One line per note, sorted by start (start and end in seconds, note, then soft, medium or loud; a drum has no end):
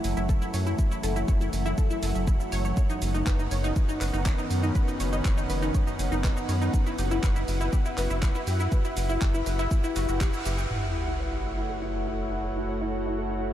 0.00 10.76 F#2 medium
0.00 2.73 E3 medium
0.00 2.73 F#3 medium
0.00 2.73 A3 medium
0.00 13.53 F#5 medium
0.04 0.15 F#1 loud
0.04 open hi-hat loud
0.04 shaker medium
0.17 0.38 F#1 loud
0.17 0.22 E4 loud
0.17 shaker soft
0.29 0.38 A4 medium
0.29 kick loud
0.29 shaker medium
0.42 0.50 E4 loud
0.42 shaker soft
0.54 0.75 F#2 medium
0.54 0.59 C#5 medium
0.54 open hi-hat loud
0.54 shaker medium
0.66 0.75 E4 loud
0.66 shaker soft
0.79 kick loud
0.79 shaker medium
0.91 0.96 E4 loud
0.91 shaker soft
1.03 1.24 F#1 loud
1.03 1.12 A4 medium
1.03 open hi-hat loud
1.03 shaker medium
1.16 1.25 E4 loud
1.16 shaker soft
1.28 1.49 F#1 loud
1.28 1.34 C#5 medium
1.28 kick loud
1.28 shaker medium
1.41 1.49 E4 loud
1.41 shaker soft
1.53 1.74 F#1 loud
1.53 open hi-hat medium
1.53 shaker medium
1.66 1.71 E4 loud
1.66 shaker soft
1.78 1.87 A4 medium
1.78 kick loud
1.78 shaker medium
1.90 1.99 E4 loud
1.90 shaker soft
2.03 2.13 F#1 loud
2.03 2.15 A4 medium
2.03 open hi-hat loud
2.03 shaker medium
2.15 2.36 F#1 medium
2.15 2.24 E5 medium
2.15 shaker soft
2.27 2.39 E4 medium
2.27 kick loud
2.27 shaker medium
2.40 2.49 E4 medium
2.40 shaker soft
2.52 2.73 F#1 medium
2.52 2.58 C#5 loud
2.52 open hi-hat medium
2.52 shaker medium
2.65 2.70 C#5 medium
2.65 shaker soft
2.77 6.70 D#3 medium
2.77 6.70 B3 medium
2.77 6.70 C#4 medium
2.77 6.74 D#4 medium
2.77 2.82 C#5 medium
2.77 kick loud
2.77 shaker medium
2.90 2.98 D#4 loud
2.90 shaker soft
3.01 3.23 F#1 loud
3.01 12.59 B4 medium
3.01 open hi-hat loud
3.01 shaker medium
3.14 3.20 D#4 medium
3.14 shaker soft
3.27 3.48 F#1 medium
3.27 3.35 B4 medium
3.27 kick loud
3.27 clap loud
3.27 shaker medium
3.39 3.48 D#4 loud
3.39 shaker soft
3.51 3.72 F#1 loud
3.51 3.57 C#5 medium
3.51 open hi-hat medium
3.51 shaker medium
3.64 3.73 D#4 loud
3.64 shaker soft
3.76 kick loud
3.76 shaker medium
3.89 3.94 D#4 loud
3.89 shaker soft
4.01 4.12 F#1 loud
4.01 4.10 B4 medium
4.01 clap medium
4.01 open hi-hat loud
4.01 shaker medium
4.13 4.34 F#1 loud
4.13 4.22 D#4 loud
4.13 shaker soft
4.26 4.31 C#5 medium
4.26 kick loud
4.26 clap loud
4.26 shaker medium
4.38 4.47 D#4 loud
4.38 shaker soft
4.51 4.72 F#2 medium
4.51 open hi-hat medium
4.51 shaker medium
4.63 4.68 D#4 loud
4.63 shaker soft
4.75 4.84 B4 medium
4.75 kick loud
4.75 shaker medium
4.88 4.97 D#4 loud
4.88 shaker soft
5.00 5.21 F#1 loud
5.00 5.05 C#5 medium
5.00 open hi-hat loud
5.00 shaker medium
5.13 5.21 D#4 loud
5.13 shaker soft
5.25 5.46 F#1 medium
5.25 kick loud
5.25 clap loud
5.25 shaker medium
5.38 5.43 D#4 loud
5.38 shaker soft
5.50 5.71 F#1 loud
5.50 5.59 B4 medium
5.50 open hi-hat medium
5.50 shaker medium
5.62 5.71 D#4 loud
5.62 shaker soft
5.74 5.80 C#5 medium
5.74 kick loud
5.74 shaker medium
5.87 5.96 D#4 loud
5.87 shaker soft
5.99 6.10 F#1 loud
5.99 open hi-hat loud
5.99 shaker medium
6.12 6.33 F#1 loud
6.12 6.17 D#4 loud
6.12 shaker soft
6.24 6.33 B4 medium
6.24 kick loud
6.24 clap loud
6.24 shaker medium
6.37 6.45 D#4 loud
6.37 shaker soft
6.49 6.70 F#2 medium
6.49 6.54 C#5 medium
6.49 open hi-hat medium
6.49 shaker medium
6.62 6.70 D#4 loud
6.62 shaker soft
6.74 13.53 E4 medium
6.74 10.66 E4 medium
6.74 8.70 F#4 medium
6.74 kick loud
6.74 shaker medium
6.86 6.92 E4 loud
6.86 shaker soft
6.98 7.19 F#1 loud
6.98 7.07 G4 medium
6.98 open hi-hat loud
6.98 shaker medium
7.11 7.20 E4 loud
7.11 shaker soft
7.23 7.44 F#1 loud
7.23 7.29 B4 medium
7.23 kick loud
7.23 clap loud
7.23 shaker medium
7.36 7.44 E4 loud
7.36 shaker soft
7.48 7.69 F#1 loud
7.48 open hi-hat medium
7.48 shaker medium
7.61 7.66 E4 loud
7.61 shaker soft
7.73 7.82 G4 medium
7.73 kick loud
7.73 shaker medium
7.86 7.94 E4 loud
7.86 shaker soft
7.98 8.08 F#1 loud
7.98 8.03 B4 medium
7.98 clap medium
7.98 open hi-hat loud
7.98 shaker medium
8.10 8.31 F#1 loud
8.10 8.19 E4 loud
8.10 shaker soft
8.22 kick loud
8.22 clap loud
8.22 shaker medium
8.35 8.40 E4 loud
8.35 shaker soft
8.47 8.68 F#2 medium
8.47 8.56 G4 medium
8.47 open hi-hat medium
8.47 shaker medium
8.60 8.68 E4 loud
8.60 shaker soft
8.72 10.68 G4 medium
8.72 8.77 B4 medium
8.72 kick loud
8.72 shaker medium
8.85 8.93 E4 loud
8.85 shaker soft
8.97 9.18 F#1 loud
8.97 open hi-hat loud
8.97 shaker medium
9.09 9.15 E4 loud
9.09 shaker soft
9.21 9.43 F#1 loud
9.21 9.31 G4 medium
9.21 kick loud
9.21 clap loud
9.21 shaker medium
9.34 9.43 E4 loud
9.34 shaker soft
9.46 9.67 F#1 loud
9.46 9.52 B4 medium
9.46 open hi-hat medium
9.46 shaker medium
9.59 9.68 E4 loud
9.59 shaker soft
9.71 kick loud
9.71 shaker medium
9.84 9.89 E4 loud
9.84 shaker soft
9.96 10.07 F#1 loud
9.96 10.07 F#4 loud
9.96 open hi-hat loud
9.96 shaker medium
10.09 10.29 F#1 medium
10.09 10.17 F#4 medium
10.09 shaker soft
10.21 10.30 G4 medium
10.21 kick loud
10.21 clap loud
10.21 shaker medium
10.33 10.45 E4 medium
10.33 shaker soft
10.45 10.67 F#1 loud
10.45 10.51 G4 medium
10.45 open hi-hat medium
10.45 shaker medium
10.58 10.63 G5 medium
10.58 shaker soft
10.70 13.53 F#1 medium
10.70 13.53 A3 medium
10.70 13.53 E4 medium
10.70 13.53 F#4 medium
10.70 sub drop medium
10.83 10.88 E4 loud
10.95 11.04 A4 medium
10.95 13.53 A4 medium
11.06 11.16 E4 medium
11.06 13.53 C#5 medium
11.20 11.25 C#5 medium
11.33 11.41 E4 loud
11.57 11.63 E4 loud
11.70 11.78 A4 medium
11.82 11.91 E4 loud
11.94 12.00 C#5 medium
12.07 12.16 E4 medium
12.32 12.37 E4 loud
12.44 12.53 A4 medium
12.56 12.65 E4 loud
12.69 12.74 C#5 medium
12.81 12.90 E4 loud
13.06 13.11 E4 medium
13.18 13.27 A4 medium
13.31 13.39 E4 loud
13.43 13.48 C#5 medium